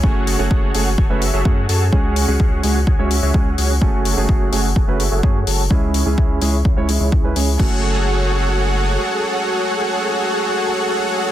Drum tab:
CC |--------|--------|--------|--------|
HH |-o-o-o-o|-o-o-o-o|-o-o-o-o|-o-o-o-o|
BD |o-o-o-o-|o-o-o-o-|o-o-o-o-|o-o-o-o-|

CC |x-------|--------|
HH |--------|--------|
BD |o-------|--------|